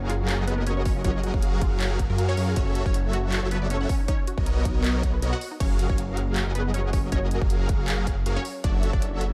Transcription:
Already playing: detuned saw bass F#1, supersaw synth F#3 F#4 G#4 A#4 F5
0.10 synth arpeggio sound F4, closed hi-hat
0.29 synth arpeggio sound C#5, clap, closed hi-hat
0.39 detuned saw bass F#1, supersaw synth F#3 F#4 G#4 A#4 D#5, synth arpeggio sound G#4
0.47 synth pluck B3 B4, closed hi-hat
0.58 synth arpeggio sound A#4
0.67 synth pluck C#4 C#5, closed hi-hat
0.77 synth arpeggio sound C#5
0.85 synth pluck C#4 C#5, kick, open hi-hat
0.96 synth arpeggio sound F4
1.05 synth pluck C#4 C#5, synth arpeggio sound F4, kick, closed hi-hat
1.24 synth arpeggio sound F#4, closed hi-hat
1.34 detuned saw bass F#1, supersaw synth F#3 G#4 F5, kick
1.43 synth arpeggio sound G#4, closed hi-hat
1.61 synth arpeggio sound F4, kick, closed hi-hat
1.80 synth arpeggio sound C#5, clap, closed hi-hat
1.91 synth arpeggio sound G#4
1.99 kick, closed hi-hat
2.10 detuned saw bass F#2, supersaw synth F#3 F#4 G#4 A#4 F5, synth arpeggio sound A#4
2.18 closed hi-hat
2.29 synth pluck C#4 C#5, synth arpeggio sound C#5
2.37 detuned saw bass F#2, supersaw synth F#3 F#4 G#4 A#4 F5, open hi-hat
2.48 synth arpeggio sound F4
2.56 detuned saw bass F#1, supersaw synth F#3 F#4 A4 C#5 E5, synth pluck C#4 C#5, synth arpeggio sound F#4, kick, closed hi-hat
2.75 synth arpeggio sound A4, closed hi-hat
2.86 detuned saw bass F#1, supersaw synth F#3 F#4 A4 C#5 E5, synth pluck C#4 C#5, kick
2.94 synth arpeggio sound C#5, closed hi-hat
3.13 synth arpeggio sound F#4, closed hi-hat
3.32 synth arpeggio sound F#5, clap, closed hi-hat
3.42 detuned saw bass F#1, supersaw synth F#3 F#4 A4 C#5 E5, synth arpeggio sound C#5
3.51 synth pluck B3 B4, closed hi-hat
3.62 synth arpeggio sound D5
3.70 synth pluck C#4 C#5, closed hi-hat
3.81 synth arpeggio sound F#5
3.89 synth pluck C#4 C#5, kick, open hi-hat
4.00 synth arpeggio sound D#4
4.08 synth pluck C#4 C#5, synth arpeggio sound D#4, kick, closed hi-hat
4.27 synth arpeggio sound F#4, closed hi-hat
4.38 detuned saw bass B1, supersaw synth B3 F#4 A#4 C#5 D#5, kick
4.46 synth arpeggio sound A#4, closed hi-hat
4.65 synth arpeggio sound D#4, kick, closed hi-hat
4.84 synth arpeggio sound D#5, clap, closed hi-hat
4.95 synth arpeggio sound A#4
5.03 kick, closed hi-hat
5.14 synth arpeggio sound B4
5.22 detuned saw bass B1, supersaw synth B3 F#4 A#4 C#5 D#5, closed hi-hat
5.33 synth pluck F#4 F#5, synth arpeggio sound D#5
5.41 open hi-hat
5.51 synth arpeggio sound D#4
5.60 detuned saw bass F#1, supersaw synth F#3 F#4 G#4 A#4 F5, synth pluck C#4 C#5, kick, closed hi-hat, crash
5.79 closed hi-hat
5.89 detuned saw bass F#1, supersaw synth F#3 F#4 A#4 F5, synth pluck C#4 C#5, kick
5.98 closed hi-hat
6.17 closed hi-hat
6.36 clap, closed hi-hat
6.46 detuned saw bass F#1, supersaw synth F#3 F#4 G#4 A#4 D#5
6.55 synth pluck B3 B4, closed hi-hat
6.74 synth pluck C#4 C#5, closed hi-hat
6.93 synth pluck C#4 C#5, kick, open hi-hat
7.12 synth pluck C#4 C#5, kick, closed hi-hat
7.31 closed hi-hat
7.41 detuned saw bass F#1, supersaw synth F#3 F#4 G#4 A#4, kick
7.50 closed hi-hat
7.69 kick, closed hi-hat
7.88 clap, closed hi-hat
8.07 kick, closed hi-hat
8.26 detuned saw bass F#1, supersaw synth F#3 F#4 G#4 A#4 F5, closed hi-hat
8.36 synth pluck C#4 C#5
8.45 open hi-hat
8.64 detuned saw bass F#1, supersaw synth F#3 F#4 A4 C#5 E5, synth pluck D4 D5, kick, closed hi-hat
8.83 closed hi-hat
8.93 detuned saw bass F#1, supersaw synth F#3 C#5 E5, synth pluck D4 D5, kick
9.02 closed hi-hat
9.21 closed hi-hat

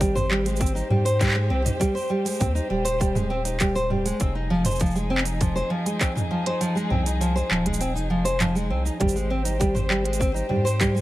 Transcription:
Already playing: analog synth bass G#1, string quartet G4 C5
0.01 nylon-string guitar G3, kick, closed hi-hat, cabasa
0.15 nylon-string guitar C5, mid tom, cabasa
0.30 nylon-string guitar G3, clap
0.45 nylon-string guitar G#3, closed hi-hat, cabasa
0.56 nylon-string guitar C4, cabasa
0.61 kick, closed hi-hat, cabasa
0.66 cabasa
0.75 nylon-string guitar D#4, cabasa
0.90 analog synth bass G#2, nylon-string guitar G3, mid tom
1.05 nylon-string guitar C5, closed hi-hat, cabasa
1.20 nylon-string guitar G3, kick, clap, closed hi-hat, cabasa
1.24 clap
1.26 clap
1.28 clap
1.31 clap
1.33 nylon-string guitar G#3, clap
1.50 analog synth bass C2, nylon-string guitar C4
1.65 nylon-string guitar D#4, closed hi-hat, mid tom, cabasa
1.79 nylon-string guitar G3, kick, closed hi-hat, cabasa
1.95 nylon-string guitar C5, cabasa
1.99 cabasa
2.01 cabasa
2.04 cabasa
2.07 cabasa
2.09 nylon-string guitar G3, cabasa
2.25 nylon-string guitar G#3, closed hi-hat, cabasa
2.29 cabasa
2.31 cabasa
2.34 cabasa
2.36 cabasa
2.39 analog synth bass D#2, nylon-string guitar C4, kick, closed hi-hat, mid tom, cabasa
2.41 cabasa
2.55 nylon-string guitar D#4, cabasa
2.70 analog synth bass D#1, nylon-string guitar G3
2.85 nylon-string guitar C5, closed hi-hat, cabasa
3.00 nylon-string guitar G3, kick, closed hi-hat, cabasa
3.15 nylon-string guitar G#3, mid tom, cabasa
3.30 nylon-string guitar C4
3.45 nylon-string guitar D#4, closed hi-hat, cabasa
3.60 nylon-string guitar G3, kick, clap, closed hi-hat, cabasa
3.75 nylon-string guitar C5, cabasa
3.90 nylon-string guitar G3, mid tom
4.05 nylon-string guitar G#3, closed hi-hat, cabasa
4.20 analog synth bass F1, string quartet F3 D#4 G#4, nylon-string guitar C4, kick, closed hi-hat, cabasa
4.35 nylon-string guitar D#4
4.50 nylon-string guitar F3
4.65 nylon-string guitar C5, closed hi-hat, mid tom, cabasa
4.71 cabasa
4.75 cabasa
4.80 nylon-string guitar F3, kick, closed hi-hat, cabasa
4.86 cabasa
4.91 cabasa
4.95 nylon-string guitar G#3, cabasa
5.10 nylon-string guitar C4
5.18 clap
5.25 nylon-string guitar D#4, closed hi-hat, cabasa
5.41 nylon-string guitar F3, kick, closed hi-hat, mid tom, cabasa
5.55 nylon-string guitar C5, cabasa
5.70 nylon-string guitar F3
5.86 nylon-string guitar G#3, closed hi-hat, cabasa
6.01 nylon-string guitar C4, kick, clap, closed hi-hat, cabasa
6.15 nylon-string guitar D#4, mid tom, cabasa
6.31 nylon-string guitar F3
6.46 nylon-string guitar C5, closed hi-hat
6.61 nylon-string guitar F3, closed hi-hat, cabasa
6.75 nylon-string guitar G#3, cabasa
6.90 analog synth bass C2, nylon-string guitar C4, mid tom
7.06 nylon-string guitar D#4, closed hi-hat, cabasa
7.21 nylon-string guitar F3, closed hi-hat, cabasa
7.36 nylon-string guitar C5, cabasa
7.51 analog synth bass D#1, nylon-string guitar F3, clap
7.66 nylon-string guitar G#3, closed hi-hat, mid tom
7.74 cabasa
7.80 nylon-string guitar C4, closed hi-hat, cabasa
7.95 analog synth bass F1, nylon-string guitar D#4, cabasa
8.10 nylon-string guitar F3
8.25 nylon-string guitar C5, closed hi-hat, cabasa
8.40 analog synth bass F1, nylon-string guitar F3, clap, closed hi-hat, mid tom, cabasa
8.55 nylon-string guitar G#3, cabasa
8.70 analog synth bass C2, nylon-string guitar C4
8.85 nylon-string guitar D#4, cabasa
9.00 analog synth bass G#1, nylon-string guitar G3, string quartet G4 C5, kick, closed hi-hat, mid tom
9.09 cabasa
9.16 nylon-string guitar G#3, cabasa
9.30 nylon-string guitar C4
9.45 nylon-string guitar D#4, closed hi-hat, cabasa
9.60 nylon-string guitar G3, kick, closed hi-hat, cabasa
9.75 nylon-string guitar C5, mid tom, cabasa
9.90 nylon-string guitar G3, clap
10.04 nylon-string guitar G#3, closed hi-hat
10.13 closed hi-hat, cabasa
10.19 nylon-string guitar C4, kick, cabasa
10.34 nylon-string guitar D#4, cabasa
10.49 analog synth bass G#2, nylon-string guitar G3, mid tom
10.65 nylon-string guitar C5, cabasa
10.80 nylon-string guitar G3, kick, clap, closed hi-hat, cabasa
10.95 nylon-string guitar G#3, cabasa

